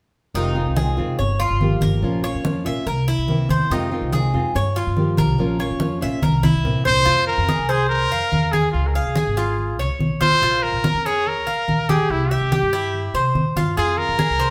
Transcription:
0.34 upright bass F1, nylon-string guitar C3 D#3 G#3 C4 F4, cuban tres D#4, high conga
0.55 nylon-string guitar D#3 G#3 C4 F4, high conga
0.66 upright bass C2
0.76 nylon-string guitar D#3 G#3 C4 F4, cuban tres G#4, high conga
0.97 upright bass F1, nylon-string guitar D#3 G#3 C4 F4, high conga
1.19 upright bass G1, cuban tres C#5, muted nylon-string guitar stroke, high conga
1.40 cuban tres F4, high conga
1.51 upright bass G1
1.60 nylon-string guitar F3 A#3 F4 G4, high conga
1.81 upright bass G1, cuban tres A#4, high conga
2.02 upright bass A#1, nylon-string guitar F3 A#3 C#4 F4, high conga
2.23 nylon-string guitar A#3 C#4 F4, cuban tres C#5, high conga
2.34 upright bass F2
2.43 nylon-string guitar F3 A#3 C#4 F4, high conga
2.65 upright bass A#1, nylon-string guitar A#3 C#4 F4, cuban tres E5, high conga
2.86 upright bass C2, cuban tres A#4, muted nylon-string guitar stroke, high conga
3.08 cuban tres E4, high conga
3.18 upright bass C2
3.27 nylon-string guitar E3 A#3 C4 E4, high conga
3.49 upright bass E2, cuban tres C5, high conga
3.70 upright bass F2, nylon-string guitar C3 D#3 G#3 C4 F4, cuban tres D#4, high conga
3.91 nylon-string guitar D#3 G#3 C4 F4, high conga
4.01 upright bass C2
4.13 nylon-string guitar D#3 G#3 C4 F4, cuban tres G#4, high conga
4.34 upright bass F2, nylon-string guitar D#3 G#3 C4 F4, high conga
4.55 upright bass G2, cuban tres C#5, muted nylon-string guitar stroke, high conga
4.76 cuban tres F4, high conga
4.87 upright bass G2
4.96 nylon-string guitar F3 A#3 F4 G4, high conga
5.17 upright bass C2, cuban tres A#4, high conga
5.38 upright bass A#1, nylon-string guitar F3 A#3 C#4 F4, high conga
5.59 nylon-string guitar A#3 C#4 F4, cuban tres C#5, high conga
5.71 upright bass F2
5.80 nylon-string guitar F3 A#3 C#4 F4, high conga
6.01 upright bass A#1, nylon-string guitar A#3 C#4 F4, cuban tres E5, high conga
6.21 upright bass C2, cuban tres A#4, muted nylon-string guitar stroke, high conga
6.43 cuban tres E4, high conga
6.55 upright bass C2
6.63 nylon-string guitar E3 A#3 C4 E4, low conga
6.85 upright bass C2, cuban tres C5, trumpet C5, low conga
7.05 upright bass F2, cuban tres F4, high conga
7.27 trumpet A#4, high conga
7.38 upright bass F2
7.49 cuban tres G#4, high conga
7.59 upright bass C2
7.69 trumpet G#4, cuban tres C5, high conga
7.89 trumpet A#4, high conga
8.11 upright bass F2, cuban tres F5, high conga
8.32 upright bass E2, high conga
8.52 trumpet G#4, cuban tres G#4, high conga
8.71 upright bass C#2, trumpet F4, high conga
8.87 trumpet A#4
8.95 trumpet G#4, cuban tres F5, high conga
9.06 upright bass C#2
9.16 cuban tres G#4, high conga
9.27 upright bass G#1
9.37 cuban tres F4, high conga
9.58 high conga
9.79 upright bass C#2, cuban tres C#5, high conga
9.99 upright bass B1, high conga
10.21 cuban tres F4, trumpet C5, high conga
10.42 upright bass A#1, cuban tres F4, high conga
10.63 trumpet A#4, high conga
10.72 upright bass A#1
10.84 cuban tres A#4, high conga
10.94 upright bass F2
11.05 trumpet G#4, cuban tres C#5, high conga
11.27 trumpet A#4, high conga
11.47 upright bass A#1, cuban tres F5, high conga
11.68 upright bass A#1, high conga
11.89 cuban tres G4, trumpet G#4, high conga
12.10 upright bass C2, trumpet E4, high conga
12.31 trumpet G4, cuban tres E5, high conga
12.41 upright bass C2
12.52 cuban tres G4, high conga
12.63 upright bass G2
12.73 cuban tres E4, high conga
12.94 high conga
13.14 upright bass C3, cuban tres C5, high conga
13.35 upright bass A#2, high conga
13.56 upright bass G2, cuban tres F4, high conga
13.77 upright bass F2, cuban tres F4, trumpet G#4, high conga
13.98 trumpet A#4, high conga
14.09 upright bass F2
14.19 cuban tres G#4, high conga
14.30 upright bass C2
14.39 cuban tres C5, high conga

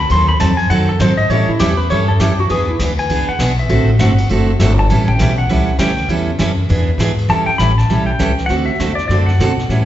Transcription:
0.10 upright bass D#2, steel-string acoustic guitar D#3 F#3 C4 D#4 A4, pedal steel guitar C6, ride
0.29 pedal steel guitar B5
0.40 upright bass F2, steel-string acoustic guitar D#3 F#3 C4 D#4 A4, pedal steel guitar A5, snare, hi-hat pedal, ride
0.57 pedal steel guitar G#5, ride
0.69 upright bass F#2, steel-string acoustic guitar D#3 F#3 C4 D#4 A4, pedal steel guitar F#5, ride
0.89 pedal steel guitar A4
1.00 upright bass G#2, steel-string acoustic guitar D#3 F#3 C4 D#4 A4, pedal steel guitar C5, snare, hi-hat pedal, ride
1.17 pedal steel guitar D#5, ride
1.29 upright bass A2, steel-string acoustic guitar E3 G3 C#4 E4 A4, pedal steel guitar C#5, ride
1.49 pedal steel guitar E4, muted upright bass stroke
1.59 upright bass E2, steel-string acoustic guitar E3 G3 C#4 E4 A4, pedal steel guitar G4, snare, hi-hat pedal, ride
1.77 pedal steel guitar B4
1.90 upright bass G2, steel-string acoustic guitar E3 G3 C#4 E4 A4, pedal steel guitar C#5, ride
2.08 pedal steel guitar A4
2.20 upright bass F#2, steel-string acoustic guitar E3 G3 C#4 E4 A4, pedal steel guitar G4, snare, hi-hat pedal, ride
2.40 pedal steel guitar F#4
2.49 upright bass E2, steel-string acoustic guitar E3 B3 D4 G#4, pedal steel guitar G#4, ride
2.69 pedal steel guitar E4
2.79 upright bass D2, steel-string acoustic guitar E3 B3 D4 G#4, snare, hi-hat pedal, ride
2.98 pedal steel guitar G#5, ride
3.09 upright bass C#2, steel-string acoustic guitar E3 B3 D4 G#4, ride
3.29 pedal steel guitar F#5, muted upright bass stroke
3.39 upright bass B1, steel-string acoustic guitar E3 B3 D4 G#4, snare, hi-hat pedal, ride
3.58 pedal steel guitar E5, ride
3.69 upright bass A1, steel-string acoustic guitar D3 A3 C4 F#4 A4, ride
3.99 upright bass G1, steel-string acoustic guitar D3 A3 C4 F#4 A4, pedal steel guitar F#5, snare, hi-hat pedal, ride
4.18 ride
4.29 upright bass F#1, steel-string acoustic guitar D3 A3 C4 F#4 A4, ride
4.59 upright bass G1, steel-string acoustic guitar D3 A3 C4 F#4 A4, snare, hi-hat pedal, ride
4.79 pedal steel guitar A5
4.89 upright bass A1, steel-string acoustic guitar E3 G3 C#4 E4 A4, ride
5.08 pedal steel guitar G5, kick
5.19 upright bass B1, steel-string acoustic guitar E3 G3 C#4 E4 A4, snare, hi-hat pedal, ride
5.38 pedal steel guitar F#5
5.49 upright bass C#2, steel-string acoustic guitar E3 G3 C#4 E4 A4, ride
5.78 upright bass D2, steel-string acoustic guitar E3 G3 C#4 E4 A4, pedal steel guitar G5, snare, hi-hat pedal, ride
5.98 ride
6.08 upright bass E2, steel-string acoustic guitar E3 G3 C#4 E4 A4, ride
6.39 upright bass F#2, steel-string acoustic guitar E3 G3 C#4 E4 A4, snare, hi-hat pedal, ride
6.69 upright bass E2, steel-string acoustic guitar E3 B3 D4 G#4, ride
6.98 upright bass G#2, steel-string acoustic guitar E3 B3 D4 G#4, snare, hi-hat pedal, ride
7.18 ride
7.29 upright bass E2, steel-string acoustic guitar E3 G3 C#4 E4 A4, pedal steel guitar A5, brush sweep, snare
7.46 pedal steel guitar G5, muted upright bass stroke
7.58 upright bass A1, steel-string acoustic guitar E3 G3 C#4 E4 A4, pedal steel guitar B5, snare, hi-hat pedal
7.78 pedal steel guitar A5, snare
7.89 upright bass B1, steel-string acoustic guitar E3 G3 C#4 E4 A4, brush sweep, snare
8.06 pedal steel guitar G5
8.19 upright bass C#2, steel-string acoustic guitar E3 G3 C#4 E4 A4, snare, hi-hat pedal
8.38 snare
8.46 upright bass D2, steel-string acoustic guitar D3 A3 C4 F#4 A4, pedal steel guitar F#5, brush sweep, snare
8.66 pedal steel guitar E5
8.79 upright bass E2, steel-string acoustic guitar D3 A3 C4 F#4 A4, snare, hi-hat pedal
8.95 pedal steel guitar D5, snare
9.08 upright bass F#2, steel-string acoustic guitar D3 A3 C4 F#4 A4, pedal steel guitar D5, brush sweep, snare
9.26 pedal steel guitar F#5, snare
9.39 upright bass B2, steel-string acoustic guitar D3 A3 C4 F#4 A4, snare, hi-hat pedal
9.59 snare
9.69 upright bass A2, steel-string acoustic guitar E3 G3 C#4 E4 A4, brush sweep, snare

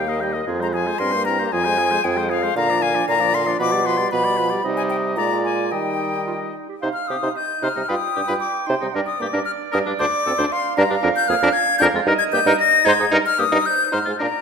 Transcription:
Already playing: bassoon D#2, clarinet G4, flute F5, oboe G5
0.07 french horn A#3, clarinet A#4, oboe D#5
0.21 french horn G3, clarinet G4, flute D#5, oboe G5
0.34 french horn A#3, clarinet A#4, oboe D#5
0.47 bassoon F2, french horn F3, clarinet F4, oboe G#4
0.61 french horn G#3, clarinet G#4, oboe C5, flute A#5
0.73 french horn F3, clarinet F4, oboe G#4, flute G#5
0.87 french horn G#3, clarinet G#4, oboe C5
0.99 bassoon G2, french horn C4, clarinet E4, oboe A#4, flute C6
1.12 french horn A#3, clarinet G4, oboe C5
1.26 french horn C4, clarinet E4, oboe A#4, flute A#5
1.40 french horn A#3, clarinet G4, oboe C5
1.52 bassoon F2, french horn F3, clarinet F4, oboe G#4, flute G#5
1.65 french horn G#3, clarinet G#4, oboe C5
1.79 french horn F3, clarinet F4, oboe G#4
1.91 french horn G#3, clarinet G#4, oboe C5
2.04 bassoon F2, french horn F3, clarinet F4, oboe G#4, flute G5
2.17 french horn G#3, clarinet G#4, oboe C5
2.30 french horn F3, clarinet F4, oboe G#4, flute F5
2.43 french horn G#3, clarinet G#4, oboe C5
2.55 bassoon A#2, french horn D3, clarinet F4, oboe F5, flute A#5
2.69 french horn F3, clarinet D4, oboe D5
2.81 french horn D3, clarinet F4, oboe F5, flute G#5
2.94 french horn F3, clarinet D4, oboe D5
3.07 bassoon A#2, french horn D3, clarinet F4, oboe F5, flute A#5
3.20 french horn F3, clarinet D4, oboe D5
3.33 french horn D3, clarinet F4, oboe F5, flute C6
3.46 french horn F3, clarinet D4, oboe D5
3.59 bassoon B2, french horn F3, clarinet F4, oboe B4, flute D6
3.72 french horn G3, clarinet G4, oboe D5
3.85 french horn F3, clarinet F4, oboe B4, flute C6
3.98 french horn G3, clarinet G4, oboe D5
4.11 bassoon B2, french horn F3, clarinet F4, oboe B4, flute B5
4.24 french horn G3, clarinet G4, oboe D5
4.37 french horn F3, clarinet F4, oboe B4
4.50 french horn G3, clarinet G4, oboe D5
4.64 bassoon C3, french horn G3, clarinet D#4, oboe D#5
4.77 flute G#5
4.90 flute G5
5.16 bassoon A#2, french horn G#3, clarinet F4, oboe D5, flute A#5
5.45 flute G#5
5.72 bassoon D#3, french horn G3, clarinet D#4, oboe D#5, flute G5
6.27 clarinet F4
6.41 clarinet D#4
6.69 clarinet G4
6.81 bassoon C3, french horn D#4, oboe C5, clarinet F5
6.93 flute F6
7.08 bassoon C3, french horn C4, oboe G4, flute D#6
7.23 bassoon C3, french horn D#4, oboe C5
7.36 clarinet D#5, flute G6
7.62 bassoon C3, french horn D#4, oboe C5, flute F6
7.76 bassoon C3, french horn G3, oboe D#4
7.88 bassoon G2, french horn F4, oboe B4, clarinet G5, flute D#6
8.16 bassoon G2, french horn D4, oboe G4
8.28 bassoon G2, french horn F4, oboe B4
8.40 flute D6
8.67 bassoon C3, french horn D#4, oboe C5, flute C6
8.81 bassoon C3, french horn G3, oboe D#4
8.94 bassoon G2, french horn D4, oboe A#4, clarinet D5
9.06 flute D#6
9.20 bassoon G2, french horn A#3, oboe G4, flute D6
9.33 bassoon G2, french horn D4, oboe A#4
9.45 flute F6
9.72 bassoon G2, french horn D4, oboe A#4, flute D#6
9.86 bassoon G2, french horn G3, oboe D4
9.99 bassoon D2, french horn D4, oboe C5, flute D6
10.26 bassoon D2, french horn C4, oboe A4
10.38 bassoon D2, french horn D4, oboe C5
10.52 clarinet F5, flute C6
10.77 bassoon G2, french horn D4, oboe A#4, flute A#5
10.90 bassoon G2, french horn G3, oboe D4
11.03 bassoon F2, french horn D4, oboe A#4
11.16 flute G6
11.28 bassoon F2, french horn A#3, oboe G#4, flute F6
11.42 bassoon F2, french horn D4, oboe A#4
11.53 flute G#6
11.78 bassoon F2, french horn D4, oboe A#4, flute G6
11.94 bassoon F2, french horn G#3, oboe F4
12.06 bassoon G2, french horn D#4, oboe A#4, clarinet D#5
12.18 flute G#6
12.32 bassoon G2, french horn A#3, oboe G4, flute G6
12.46 bassoon G2, french horn D#4, oboe A#4
12.59 flute A#6
12.85 bassoon G#2, french horn D#4, oboe C5, flute G#6
13.00 bassoon G#2, french horn G#3, oboe D#4
13.11 bassoon G2, french horn D#4, oboe A#4
13.26 flute F6
13.38 bassoon G2, french horn A#3, oboe G4, flute D#6
13.52 bassoon G2, french horn D#4, oboe A#4
13.66 clarinet C5, flute G6
13.92 bassoon G#2, french horn D#4, oboe C5, flute F6
14.05 bassoon G#2, french horn G#3, oboe F4
14.19 bassoon A#2, french horn D4, oboe A#4, clarinet D5, flute A#5

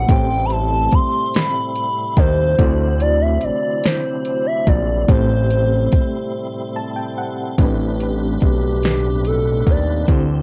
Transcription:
Already playing: tonewheel organ C3 C4 E4, soft synth lead F#5
0.07 analog synth bass A1, fm electric piano A2 A3 C4, tonewheel organ G3 A3, soft synth lead G5, kick, closed hi-hat
0.11 fm electric piano G4 C5
0.46 soft synth lead B5
0.50 soft synth lead A5, closed hi-hat
0.91 analog synth bass D#2, soft synth lead C6, kick, closed hi-hat
1.34 soft synth lead B5, snare, closed hi-hat
1.76 closed hi-hat
2.17 analog synth bass D#2, soft synth lead C5, kick, closed hi-hat
2.57 analog synth bass D2, fm electric piano D3 A3 C4 E4, tonewheel organ F#3 D4 E4, kick, closed hi-hat
2.61 fm electric piano F#4 C5
3.00 soft synth lead D5, closed hi-hat
3.22 soft synth lead E5
3.41 analog synth bass A#1, soft synth lead D5, closed hi-hat
3.84 soft synth lead C5, snare, closed hi-hat
4.25 closed hi-hat
4.47 soft synth lead E5
4.67 analog synth bass A#1, soft synth lead D5, kick, closed hi-hat
5.07 analog synth bass A1, fm electric piano A2 A3 C4 G4, tonewheel organ C3 G3 A3, soft synth lead C5, kick, closed hi-hat
5.12 fm electric piano C5
5.51 closed hi-hat
5.92 analog synth bass A#1, kick, closed hi-hat
6.76 fm electric piano A5
6.96 fm electric piano G5
7.18 fm electric piano F#5
7.58 analog synth bass A1, fm electric piano A2 A3 C4 D4, tonewheel organ G3 A3 C4 D4 B4, kick, closed hi-hat
7.62 fm electric piano G4 B4
8.00 closed hi-hat
8.41 analog synth bass B1, soft synth lead G4, kick, closed hi-hat
8.83 snare, closed hi-hat
9.25 soft synth lead A4, closed hi-hat
9.67 analog synth bass D#2, soft synth lead D5, kick, closed hi-hat
10.07 analog synth bass D2, fm electric piano D3 C4 E4 G4, tonewheel organ E3 C4, kick, closed hi-hat
10.12 fm electric piano C5

